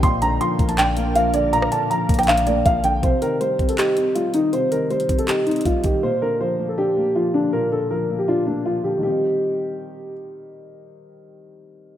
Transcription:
<<
  \new Staff \with { instrumentName = "Ambient pad" } { \time 4/4 \key c \minor \tempo 4 = 160 <d' bes' f''>1~ | <d' bes' f''>1 | r1 | r1 |
r1 | r1 | r1 | r1 | }
  \new Staff \with { instrumentName = "Grand piano" } { \time 4/4 \key c \minor c'''8 bes''8 c'''8. a''16 g''4 f''8 d''8 | bes''8 a''8 bes''8. g''16 f''8 d''8 f''8 g''8 | c''8 bes'8 c''8. a'16 g'4 f'8 ees'8 | c''8 bes'8 c''8. a'16 g'8 ees'8 f'8 g'8 |
c''8 bes'8 c''8. a'16 g'4 f'8 d'8 | bes'8 a'8 bes'8. g'16 f'8 d'8 f'8 g'8 | g'2. r4 | r1 | }
  \new Staff \with { instrumentName = "Grand piano" } { \clef bass \time 4/4 \key c \minor bes,8 d8 f8 bes8 d'8 bes8 f8 d8 | bes,8 d8 f8 bes8 d'8 bes8 f8 d8 | c8 ees8 g8 c'8 ees'8 c'8 g8 ees8 | c8 ees8 g8 c'8 ees'8 c'8 g8 ees8 |
bes,8 d8 f8 bes8 d'8 bes8 f8 d8 | bes,8 d8 f8 bes8 d'8 bes8 f8 d8 | <ees g c' ees'>1~ | <ees g c' ees'>1 | }
  \new Staff \with { instrumentName = "808-style bass" } { \clef bass \time 4/4 \key c \minor bes,,4 r8 bes,,2~ bes,,8~ | bes,,8 r4 bes,,4. bes,,4 | r1 | r1 |
r1 | r1 | r1 | r1 | }
  \new DrumStaff \with { instrumentName = "Drums" } \drummode { \time 4/4 <hh bd>8 hh8 hh8 <hh bd>16 hh16 <hc hh>8 hh8 hh8 hh8 | hh16 ss16 hh8 hh8 <hh bd>32 hh32 <hh ss>32 hh32 <hc hh>16 hh16 hh8 <hh bd>8 hh8 | <hh bd>8 hh8 hh8 <hh bd>16 hh16 <hc hh>8 hh8 hh8 hh8 | hh8 hh8 hh16 hh16 <hh bd>16 hh16 <hc hh>8 hh32 hh32 hh32 hh32 <hh bd>8 <hh bd>8 |
r4 r4 r4 r4 | r4 r4 r4 r4 | r4 r4 r4 r4 | r4 r4 r4 r4 | }
>>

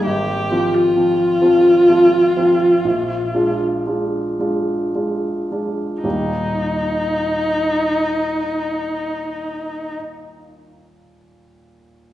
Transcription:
<<
  \new Staff \with { instrumentName = "Viola" } { \time 4/4 \key ees \major \tempo 4 = 39 g'8 f'2 r4. | ees'1 | }
  \new Staff \with { instrumentName = "Grand piano" } { \time 4/4 \key ees \major \tuplet 3/2 { aes,,8 <f c' f'>8 <f c' f'>8 <f c' f'>8 <f c' f'>8 <f c' f'>8 bes,,8 <aes d' f'>8 <aes d' f'>8 <aes d' f'>8 <aes d' f'>8 <aes d' f'>8 } | <ees, bes, g bes ees' g'>1 | }
>>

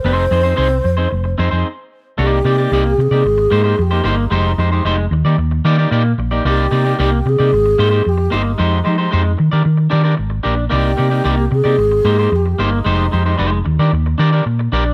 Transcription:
<<
  \new Staff \with { instrumentName = "Alto flute" } { \time 4/4 \key c \minor \tempo 4 = 112 c''2. r4 | g'4. aes'4. g'8 ees'8~ | ees'4. r2 r8 | g'4. aes'4. g'8 ees'8~ |
ees'4. r2 r8 | g'4. aes'4. g'8 ees'8~ | ees'4. r2 r8 | }
  \new Staff \with { instrumentName = "Clean electric guitar" } { \time 4/4 \key c \minor <c' ees' aes' c''>16 r16 <c' ees' aes' c''>16 <c' ees' aes' c''>16 <c' ees' aes' c''>16 r8 <c' ees' aes' c''>16 r8 <c' ees' aes' c''>16 <c' ees' aes' c''>16 r4 | <bes ees' g' d''>16 r16 <bes ees' g' d''>16 <bes ees' g' d''>16 <bes ees' g' d''>16 r8 <bes ees' g' d''>16 r8 <bes ees' g' c''>16 <bes ees' g' c''>16 r16 <bes ees' g' c''>16 <bes ees' g' c''>16 r16 | <aes ees' g' c''>16 r16 <aes ees' g' c''>16 <aes ees' g' c''>16 <aes ees' g' c''>16 r8 <bes ees' g' d''>16 r8 <bes ees' g' d''>16 <bes ees' g' d''>16 <bes ees' g' d''>16 r8 <bes ees' g' d''>16 | <bes ees' g' d''>16 r16 <bes ees' g' d''>16 <bes ees' g' d''>16 <bes ees' g' d''>16 r8 <bes ees' g' d''>16 r8 <bes ees' g' c''>16 <bes ees' g' c''>16 r8 <bes ees' g' c''>16 r16 |
<aes ees' g' c''>16 r16 <aes ees' g' c''>16 <aes ees' g' c''>16 <aes ees' g' c''>16 r8 <d' g' bes' d''>16 r8 <d' g' bes' d''>16 <d' g' bes' d''>16 r8 <d' g' bes' d''>16 r16 | <bes ees' g' d''>16 r16 <bes ees' g' d''>16 <bes ees' g' d''>16 <bes ees' g' d''>16 r8 <bes ees' g' d''>16 r8 <bes ees' g' c''>16 <bes ees' g' c''>16 r8 <bes ees' g' c''>16 r16 | <aes ees' g' c''>16 r16 <aes ees' g' c''>16 <aes ees' g' c''>16 <aes ees' g' c''>16 r8 <d' g' bes' d''>16 r8 <d' g' bes' d''>16 <d' g' bes' d''>16 r8 <d' g' bes' d''>16 r16 | }
  \new Staff \with { instrumentName = "Fingered electric bass" } { \clef bass \time 4/4 \key c \minor f,,8 f,8 c,8 f,8 f,,8 f,16 f,16 r4 | c,8 c8 c,8 c16 c16 aes,,8 aes,8 f,8 g,,8 | f,,8 f,8 f,,8 ees,16 ees16 ees,8 ees8 bes,8 bes,,8 | c,8 c8 c,8 c16 c16 aes,,8 aes,8 f,8 g,,8 |
f,8 f8 f,8 ees16 ees16 ees8 ees8 aes,,8 bes,,8 | c,8 c8 c,8 c16 c16 aes,,8 aes,8 f,8 g,,8 | f,,8 f,8 f,,8 ees,16 ees16 ees,8 ees8 bes,8 bes,,8 | }
>>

